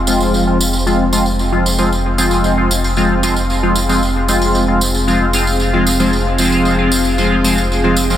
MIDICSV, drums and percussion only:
0, 0, Header, 1, 2, 480
1, 0, Start_track
1, 0, Key_signature, -4, "minor"
1, 0, Tempo, 526316
1, 1747, Time_signature, 4, 2, 24, 8
1, 7454, End_track
2, 0, Start_track
2, 0, Title_t, "Drums"
2, 64, Note_on_c, 9, 54, 78
2, 156, Note_off_c, 9, 54, 0
2, 187, Note_on_c, 9, 54, 49
2, 278, Note_off_c, 9, 54, 0
2, 311, Note_on_c, 9, 54, 40
2, 402, Note_off_c, 9, 54, 0
2, 552, Note_on_c, 9, 54, 91
2, 644, Note_off_c, 9, 54, 0
2, 667, Note_on_c, 9, 54, 49
2, 759, Note_off_c, 9, 54, 0
2, 793, Note_on_c, 9, 54, 40
2, 884, Note_off_c, 9, 54, 0
2, 1028, Note_on_c, 9, 54, 90
2, 1119, Note_off_c, 9, 54, 0
2, 1148, Note_on_c, 9, 54, 44
2, 1239, Note_off_c, 9, 54, 0
2, 1270, Note_on_c, 9, 54, 35
2, 1361, Note_off_c, 9, 54, 0
2, 1514, Note_on_c, 9, 54, 79
2, 1605, Note_off_c, 9, 54, 0
2, 1626, Note_on_c, 9, 54, 45
2, 1717, Note_off_c, 9, 54, 0
2, 1755, Note_on_c, 9, 54, 38
2, 1846, Note_off_c, 9, 54, 0
2, 1990, Note_on_c, 9, 54, 85
2, 2081, Note_off_c, 9, 54, 0
2, 2106, Note_on_c, 9, 54, 50
2, 2198, Note_off_c, 9, 54, 0
2, 2225, Note_on_c, 9, 54, 42
2, 2316, Note_off_c, 9, 54, 0
2, 2470, Note_on_c, 9, 54, 97
2, 2561, Note_off_c, 9, 54, 0
2, 2593, Note_on_c, 9, 54, 46
2, 2684, Note_off_c, 9, 54, 0
2, 2705, Note_on_c, 9, 54, 40
2, 2796, Note_off_c, 9, 54, 0
2, 2947, Note_on_c, 9, 54, 84
2, 3038, Note_off_c, 9, 54, 0
2, 3068, Note_on_c, 9, 54, 54
2, 3159, Note_off_c, 9, 54, 0
2, 3191, Note_on_c, 9, 54, 35
2, 3282, Note_off_c, 9, 54, 0
2, 3425, Note_on_c, 9, 54, 91
2, 3516, Note_off_c, 9, 54, 0
2, 3551, Note_on_c, 9, 54, 50
2, 3642, Note_off_c, 9, 54, 0
2, 3673, Note_on_c, 9, 54, 38
2, 3764, Note_off_c, 9, 54, 0
2, 3907, Note_on_c, 9, 54, 93
2, 3998, Note_off_c, 9, 54, 0
2, 4028, Note_on_c, 9, 54, 52
2, 4119, Note_off_c, 9, 54, 0
2, 4149, Note_on_c, 9, 54, 42
2, 4240, Note_off_c, 9, 54, 0
2, 4389, Note_on_c, 9, 54, 90
2, 4480, Note_off_c, 9, 54, 0
2, 4510, Note_on_c, 9, 54, 53
2, 4601, Note_off_c, 9, 54, 0
2, 4634, Note_on_c, 9, 54, 41
2, 4725, Note_off_c, 9, 54, 0
2, 4864, Note_on_c, 9, 54, 93
2, 4955, Note_off_c, 9, 54, 0
2, 4990, Note_on_c, 9, 54, 53
2, 5081, Note_off_c, 9, 54, 0
2, 5104, Note_on_c, 9, 54, 38
2, 5195, Note_off_c, 9, 54, 0
2, 5349, Note_on_c, 9, 54, 90
2, 5440, Note_off_c, 9, 54, 0
2, 5471, Note_on_c, 9, 54, 48
2, 5562, Note_off_c, 9, 54, 0
2, 5590, Note_on_c, 9, 54, 38
2, 5681, Note_off_c, 9, 54, 0
2, 5822, Note_on_c, 9, 54, 87
2, 5913, Note_off_c, 9, 54, 0
2, 5948, Note_on_c, 9, 54, 47
2, 6039, Note_off_c, 9, 54, 0
2, 6067, Note_on_c, 9, 54, 37
2, 6158, Note_off_c, 9, 54, 0
2, 6307, Note_on_c, 9, 54, 98
2, 6398, Note_off_c, 9, 54, 0
2, 6430, Note_on_c, 9, 54, 47
2, 6521, Note_off_c, 9, 54, 0
2, 6549, Note_on_c, 9, 54, 39
2, 6640, Note_off_c, 9, 54, 0
2, 6789, Note_on_c, 9, 54, 87
2, 6880, Note_off_c, 9, 54, 0
2, 6912, Note_on_c, 9, 54, 51
2, 7003, Note_off_c, 9, 54, 0
2, 7038, Note_on_c, 9, 54, 38
2, 7130, Note_off_c, 9, 54, 0
2, 7264, Note_on_c, 9, 54, 89
2, 7355, Note_off_c, 9, 54, 0
2, 7389, Note_on_c, 9, 54, 51
2, 7454, Note_off_c, 9, 54, 0
2, 7454, End_track
0, 0, End_of_file